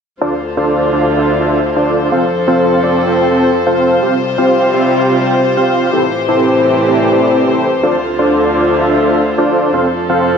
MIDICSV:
0, 0, Header, 1, 3, 480
1, 0, Start_track
1, 0, Key_signature, -1, "minor"
1, 0, Tempo, 476190
1, 216, Time_signature, 4, 2, 24, 8
1, 10461, End_track
2, 0, Start_track
2, 0, Title_t, "Supersaw synth"
2, 0, Program_c, 0, 81
2, 216, Note_on_c, 0, 62, 87
2, 216, Note_on_c, 0, 65, 81
2, 216, Note_on_c, 0, 69, 80
2, 216, Note_on_c, 0, 72, 80
2, 216, Note_on_c, 0, 74, 99
2, 339, Note_off_c, 0, 62, 0
2, 339, Note_off_c, 0, 65, 0
2, 339, Note_off_c, 0, 69, 0
2, 339, Note_off_c, 0, 72, 0
2, 339, Note_off_c, 0, 74, 0
2, 576, Note_on_c, 0, 62, 77
2, 576, Note_on_c, 0, 65, 72
2, 576, Note_on_c, 0, 69, 70
2, 576, Note_on_c, 0, 72, 72
2, 576, Note_on_c, 0, 74, 90
2, 907, Note_off_c, 0, 62, 0
2, 907, Note_off_c, 0, 65, 0
2, 907, Note_off_c, 0, 69, 0
2, 907, Note_off_c, 0, 72, 0
2, 907, Note_off_c, 0, 74, 0
2, 936, Note_on_c, 0, 62, 84
2, 936, Note_on_c, 0, 65, 74
2, 936, Note_on_c, 0, 69, 80
2, 936, Note_on_c, 0, 72, 76
2, 936, Note_on_c, 0, 74, 93
2, 1147, Note_off_c, 0, 62, 0
2, 1147, Note_off_c, 0, 65, 0
2, 1147, Note_off_c, 0, 69, 0
2, 1147, Note_off_c, 0, 72, 0
2, 1147, Note_off_c, 0, 74, 0
2, 1176, Note_on_c, 0, 62, 79
2, 1176, Note_on_c, 0, 65, 78
2, 1176, Note_on_c, 0, 69, 77
2, 1176, Note_on_c, 0, 72, 76
2, 1176, Note_on_c, 0, 76, 88
2, 1387, Note_off_c, 0, 62, 0
2, 1387, Note_off_c, 0, 65, 0
2, 1387, Note_off_c, 0, 69, 0
2, 1387, Note_off_c, 0, 72, 0
2, 1387, Note_off_c, 0, 76, 0
2, 1416, Note_on_c, 0, 62, 83
2, 1417, Note_on_c, 0, 65, 78
2, 1417, Note_on_c, 0, 69, 78
2, 1417, Note_on_c, 0, 72, 75
2, 1417, Note_on_c, 0, 76, 90
2, 1612, Note_off_c, 0, 62, 0
2, 1612, Note_off_c, 0, 65, 0
2, 1612, Note_off_c, 0, 69, 0
2, 1612, Note_off_c, 0, 72, 0
2, 1612, Note_off_c, 0, 76, 0
2, 1776, Note_on_c, 0, 62, 90
2, 1776, Note_on_c, 0, 65, 75
2, 1776, Note_on_c, 0, 69, 78
2, 1776, Note_on_c, 0, 72, 78
2, 1776, Note_on_c, 0, 74, 97
2, 2107, Note_off_c, 0, 62, 0
2, 2107, Note_off_c, 0, 65, 0
2, 2107, Note_off_c, 0, 69, 0
2, 2107, Note_off_c, 0, 72, 0
2, 2107, Note_off_c, 0, 74, 0
2, 2136, Note_on_c, 0, 60, 88
2, 2136, Note_on_c, 0, 65, 84
2, 2136, Note_on_c, 0, 69, 83
2, 2136, Note_on_c, 0, 72, 78
2, 2136, Note_on_c, 0, 77, 99
2, 2259, Note_off_c, 0, 60, 0
2, 2259, Note_off_c, 0, 65, 0
2, 2259, Note_off_c, 0, 69, 0
2, 2259, Note_off_c, 0, 72, 0
2, 2259, Note_off_c, 0, 77, 0
2, 2496, Note_on_c, 0, 60, 79
2, 2496, Note_on_c, 0, 65, 73
2, 2496, Note_on_c, 0, 69, 74
2, 2496, Note_on_c, 0, 72, 74
2, 2496, Note_on_c, 0, 77, 85
2, 2827, Note_off_c, 0, 60, 0
2, 2827, Note_off_c, 0, 65, 0
2, 2827, Note_off_c, 0, 69, 0
2, 2827, Note_off_c, 0, 72, 0
2, 2827, Note_off_c, 0, 77, 0
2, 2856, Note_on_c, 0, 60, 83
2, 2856, Note_on_c, 0, 65, 78
2, 2856, Note_on_c, 0, 69, 81
2, 2856, Note_on_c, 0, 72, 78
2, 2856, Note_on_c, 0, 74, 96
2, 3067, Note_off_c, 0, 60, 0
2, 3067, Note_off_c, 0, 65, 0
2, 3067, Note_off_c, 0, 69, 0
2, 3067, Note_off_c, 0, 72, 0
2, 3067, Note_off_c, 0, 74, 0
2, 3096, Note_on_c, 0, 60, 80
2, 3096, Note_on_c, 0, 65, 75
2, 3096, Note_on_c, 0, 69, 75
2, 3096, Note_on_c, 0, 72, 72
2, 3096, Note_on_c, 0, 79, 92
2, 3307, Note_off_c, 0, 60, 0
2, 3307, Note_off_c, 0, 65, 0
2, 3307, Note_off_c, 0, 69, 0
2, 3307, Note_off_c, 0, 72, 0
2, 3307, Note_off_c, 0, 79, 0
2, 3336, Note_on_c, 0, 60, 77
2, 3336, Note_on_c, 0, 65, 73
2, 3336, Note_on_c, 0, 69, 73
2, 3336, Note_on_c, 0, 72, 72
2, 3336, Note_on_c, 0, 79, 90
2, 3532, Note_off_c, 0, 60, 0
2, 3532, Note_off_c, 0, 65, 0
2, 3532, Note_off_c, 0, 69, 0
2, 3532, Note_off_c, 0, 72, 0
2, 3532, Note_off_c, 0, 79, 0
2, 3695, Note_on_c, 0, 72, 79
2, 3696, Note_on_c, 0, 60, 86
2, 3696, Note_on_c, 0, 65, 76
2, 3696, Note_on_c, 0, 69, 82
2, 3696, Note_on_c, 0, 77, 96
2, 4027, Note_off_c, 0, 60, 0
2, 4027, Note_off_c, 0, 65, 0
2, 4027, Note_off_c, 0, 69, 0
2, 4027, Note_off_c, 0, 72, 0
2, 4027, Note_off_c, 0, 77, 0
2, 4056, Note_on_c, 0, 60, 87
2, 4056, Note_on_c, 0, 65, 84
2, 4056, Note_on_c, 0, 67, 80
2, 4056, Note_on_c, 0, 72, 82
2, 4056, Note_on_c, 0, 77, 101
2, 4178, Note_off_c, 0, 60, 0
2, 4178, Note_off_c, 0, 65, 0
2, 4178, Note_off_c, 0, 67, 0
2, 4178, Note_off_c, 0, 72, 0
2, 4178, Note_off_c, 0, 77, 0
2, 4416, Note_on_c, 0, 60, 78
2, 4416, Note_on_c, 0, 65, 72
2, 4416, Note_on_c, 0, 67, 76
2, 4416, Note_on_c, 0, 72, 72
2, 4416, Note_on_c, 0, 77, 88
2, 4747, Note_off_c, 0, 60, 0
2, 4747, Note_off_c, 0, 65, 0
2, 4747, Note_off_c, 0, 67, 0
2, 4747, Note_off_c, 0, 72, 0
2, 4747, Note_off_c, 0, 77, 0
2, 4776, Note_on_c, 0, 60, 90
2, 4776, Note_on_c, 0, 65, 81
2, 4776, Note_on_c, 0, 67, 80
2, 4776, Note_on_c, 0, 72, 74
2, 4776, Note_on_c, 0, 76, 91
2, 4987, Note_off_c, 0, 60, 0
2, 4987, Note_off_c, 0, 65, 0
2, 4987, Note_off_c, 0, 67, 0
2, 4987, Note_off_c, 0, 72, 0
2, 4987, Note_off_c, 0, 76, 0
2, 5016, Note_on_c, 0, 60, 85
2, 5016, Note_on_c, 0, 65, 75
2, 5016, Note_on_c, 0, 67, 79
2, 5016, Note_on_c, 0, 72, 72
2, 5016, Note_on_c, 0, 79, 93
2, 5227, Note_off_c, 0, 60, 0
2, 5227, Note_off_c, 0, 65, 0
2, 5227, Note_off_c, 0, 67, 0
2, 5227, Note_off_c, 0, 72, 0
2, 5227, Note_off_c, 0, 79, 0
2, 5256, Note_on_c, 0, 60, 81
2, 5256, Note_on_c, 0, 65, 77
2, 5256, Note_on_c, 0, 67, 76
2, 5256, Note_on_c, 0, 72, 76
2, 5256, Note_on_c, 0, 79, 88
2, 5452, Note_off_c, 0, 60, 0
2, 5452, Note_off_c, 0, 65, 0
2, 5452, Note_off_c, 0, 67, 0
2, 5452, Note_off_c, 0, 72, 0
2, 5452, Note_off_c, 0, 79, 0
2, 5616, Note_on_c, 0, 60, 87
2, 5616, Note_on_c, 0, 65, 79
2, 5616, Note_on_c, 0, 67, 83
2, 5616, Note_on_c, 0, 72, 78
2, 5616, Note_on_c, 0, 77, 95
2, 5947, Note_off_c, 0, 60, 0
2, 5947, Note_off_c, 0, 65, 0
2, 5947, Note_off_c, 0, 67, 0
2, 5947, Note_off_c, 0, 72, 0
2, 5947, Note_off_c, 0, 77, 0
2, 5976, Note_on_c, 0, 60, 91
2, 5976, Note_on_c, 0, 64, 81
2, 5976, Note_on_c, 0, 67, 81
2, 5976, Note_on_c, 0, 69, 82
2, 5976, Note_on_c, 0, 72, 98
2, 6098, Note_off_c, 0, 60, 0
2, 6098, Note_off_c, 0, 64, 0
2, 6098, Note_off_c, 0, 67, 0
2, 6098, Note_off_c, 0, 69, 0
2, 6098, Note_off_c, 0, 72, 0
2, 6336, Note_on_c, 0, 60, 77
2, 6336, Note_on_c, 0, 64, 69
2, 6336, Note_on_c, 0, 67, 72
2, 6336, Note_on_c, 0, 69, 73
2, 6336, Note_on_c, 0, 72, 86
2, 6667, Note_off_c, 0, 60, 0
2, 6667, Note_off_c, 0, 64, 0
2, 6667, Note_off_c, 0, 67, 0
2, 6667, Note_off_c, 0, 69, 0
2, 6667, Note_off_c, 0, 72, 0
2, 6696, Note_on_c, 0, 60, 85
2, 6696, Note_on_c, 0, 64, 79
2, 6696, Note_on_c, 0, 67, 75
2, 6696, Note_on_c, 0, 69, 77
2, 6696, Note_on_c, 0, 72, 92
2, 6907, Note_off_c, 0, 60, 0
2, 6907, Note_off_c, 0, 64, 0
2, 6907, Note_off_c, 0, 67, 0
2, 6907, Note_off_c, 0, 69, 0
2, 6907, Note_off_c, 0, 72, 0
2, 6936, Note_on_c, 0, 60, 82
2, 6936, Note_on_c, 0, 64, 75
2, 6936, Note_on_c, 0, 67, 74
2, 6936, Note_on_c, 0, 69, 78
2, 6936, Note_on_c, 0, 74, 89
2, 7147, Note_off_c, 0, 60, 0
2, 7147, Note_off_c, 0, 64, 0
2, 7147, Note_off_c, 0, 67, 0
2, 7147, Note_off_c, 0, 69, 0
2, 7147, Note_off_c, 0, 74, 0
2, 7175, Note_on_c, 0, 60, 81
2, 7175, Note_on_c, 0, 67, 72
2, 7175, Note_on_c, 0, 69, 71
2, 7175, Note_on_c, 0, 74, 84
2, 7176, Note_on_c, 0, 64, 70
2, 7507, Note_off_c, 0, 60, 0
2, 7507, Note_off_c, 0, 64, 0
2, 7507, Note_off_c, 0, 67, 0
2, 7507, Note_off_c, 0, 69, 0
2, 7507, Note_off_c, 0, 74, 0
2, 7535, Note_on_c, 0, 60, 75
2, 7535, Note_on_c, 0, 64, 69
2, 7535, Note_on_c, 0, 67, 68
2, 7535, Note_on_c, 0, 69, 65
2, 7536, Note_on_c, 0, 72, 78
2, 7732, Note_off_c, 0, 60, 0
2, 7732, Note_off_c, 0, 64, 0
2, 7732, Note_off_c, 0, 67, 0
2, 7732, Note_off_c, 0, 69, 0
2, 7732, Note_off_c, 0, 72, 0
2, 7896, Note_on_c, 0, 62, 90
2, 7896, Note_on_c, 0, 65, 77
2, 7896, Note_on_c, 0, 69, 82
2, 7896, Note_on_c, 0, 72, 83
2, 7896, Note_on_c, 0, 74, 96
2, 8018, Note_off_c, 0, 62, 0
2, 8018, Note_off_c, 0, 65, 0
2, 8018, Note_off_c, 0, 69, 0
2, 8018, Note_off_c, 0, 72, 0
2, 8018, Note_off_c, 0, 74, 0
2, 8256, Note_on_c, 0, 62, 80
2, 8256, Note_on_c, 0, 65, 71
2, 8256, Note_on_c, 0, 69, 74
2, 8256, Note_on_c, 0, 72, 71
2, 8256, Note_on_c, 0, 74, 86
2, 8587, Note_off_c, 0, 62, 0
2, 8587, Note_off_c, 0, 65, 0
2, 8587, Note_off_c, 0, 69, 0
2, 8587, Note_off_c, 0, 72, 0
2, 8587, Note_off_c, 0, 74, 0
2, 8616, Note_on_c, 0, 62, 88
2, 8616, Note_on_c, 0, 65, 81
2, 8616, Note_on_c, 0, 69, 79
2, 8616, Note_on_c, 0, 72, 78
2, 8616, Note_on_c, 0, 74, 92
2, 8827, Note_off_c, 0, 62, 0
2, 8827, Note_off_c, 0, 65, 0
2, 8827, Note_off_c, 0, 69, 0
2, 8827, Note_off_c, 0, 72, 0
2, 8827, Note_off_c, 0, 74, 0
2, 8856, Note_on_c, 0, 62, 81
2, 8856, Note_on_c, 0, 65, 74
2, 8856, Note_on_c, 0, 69, 75
2, 8856, Note_on_c, 0, 72, 75
2, 8856, Note_on_c, 0, 76, 95
2, 9067, Note_off_c, 0, 62, 0
2, 9067, Note_off_c, 0, 65, 0
2, 9067, Note_off_c, 0, 69, 0
2, 9067, Note_off_c, 0, 72, 0
2, 9067, Note_off_c, 0, 76, 0
2, 9096, Note_on_c, 0, 62, 79
2, 9096, Note_on_c, 0, 65, 74
2, 9096, Note_on_c, 0, 69, 72
2, 9096, Note_on_c, 0, 72, 76
2, 9097, Note_on_c, 0, 76, 93
2, 9292, Note_off_c, 0, 62, 0
2, 9292, Note_off_c, 0, 65, 0
2, 9292, Note_off_c, 0, 69, 0
2, 9292, Note_off_c, 0, 72, 0
2, 9292, Note_off_c, 0, 76, 0
2, 9456, Note_on_c, 0, 62, 91
2, 9456, Note_on_c, 0, 65, 80
2, 9456, Note_on_c, 0, 69, 82
2, 9456, Note_on_c, 0, 72, 80
2, 9456, Note_on_c, 0, 74, 95
2, 9787, Note_off_c, 0, 62, 0
2, 9787, Note_off_c, 0, 65, 0
2, 9787, Note_off_c, 0, 69, 0
2, 9787, Note_off_c, 0, 72, 0
2, 9787, Note_off_c, 0, 74, 0
2, 9816, Note_on_c, 0, 60, 91
2, 9816, Note_on_c, 0, 65, 83
2, 9816, Note_on_c, 0, 69, 80
2, 9816, Note_on_c, 0, 72, 86
2, 9816, Note_on_c, 0, 77, 101
2, 9939, Note_off_c, 0, 60, 0
2, 9939, Note_off_c, 0, 65, 0
2, 9939, Note_off_c, 0, 69, 0
2, 9939, Note_off_c, 0, 72, 0
2, 9939, Note_off_c, 0, 77, 0
2, 10176, Note_on_c, 0, 60, 81
2, 10176, Note_on_c, 0, 65, 72
2, 10176, Note_on_c, 0, 69, 74
2, 10176, Note_on_c, 0, 72, 75
2, 10176, Note_on_c, 0, 77, 87
2, 10461, Note_off_c, 0, 60, 0
2, 10461, Note_off_c, 0, 65, 0
2, 10461, Note_off_c, 0, 69, 0
2, 10461, Note_off_c, 0, 72, 0
2, 10461, Note_off_c, 0, 77, 0
2, 10461, End_track
3, 0, Start_track
3, 0, Title_t, "String section"
3, 0, Program_c, 1, 48
3, 216, Note_on_c, 1, 38, 76
3, 216, Note_on_c, 1, 50, 70
3, 216, Note_on_c, 1, 65, 72
3, 216, Note_on_c, 1, 72, 84
3, 2117, Note_off_c, 1, 38, 0
3, 2117, Note_off_c, 1, 50, 0
3, 2117, Note_off_c, 1, 65, 0
3, 2136, Note_on_c, 1, 41, 76
3, 2137, Note_on_c, 1, 53, 68
3, 2137, Note_on_c, 1, 69, 66
3, 4037, Note_off_c, 1, 41, 0
3, 4037, Note_off_c, 1, 53, 0
3, 4037, Note_off_c, 1, 69, 0
3, 4055, Note_on_c, 1, 48, 78
3, 4055, Note_on_c, 1, 55, 72
3, 4055, Note_on_c, 1, 65, 71
3, 5957, Note_off_c, 1, 48, 0
3, 5957, Note_off_c, 1, 55, 0
3, 5957, Note_off_c, 1, 65, 0
3, 5975, Note_on_c, 1, 45, 77
3, 5975, Note_on_c, 1, 52, 72
3, 5976, Note_on_c, 1, 67, 72
3, 7876, Note_off_c, 1, 52, 0
3, 7877, Note_off_c, 1, 45, 0
3, 7877, Note_off_c, 1, 67, 0
3, 7895, Note_on_c, 1, 50, 71
3, 7895, Note_on_c, 1, 65, 70
3, 7896, Note_on_c, 1, 38, 77
3, 9796, Note_off_c, 1, 65, 0
3, 9797, Note_off_c, 1, 38, 0
3, 9797, Note_off_c, 1, 50, 0
3, 9816, Note_on_c, 1, 41, 79
3, 9816, Note_on_c, 1, 53, 69
3, 9816, Note_on_c, 1, 69, 68
3, 10461, Note_off_c, 1, 41, 0
3, 10461, Note_off_c, 1, 53, 0
3, 10461, Note_off_c, 1, 69, 0
3, 10461, Note_off_c, 1, 72, 0
3, 10461, End_track
0, 0, End_of_file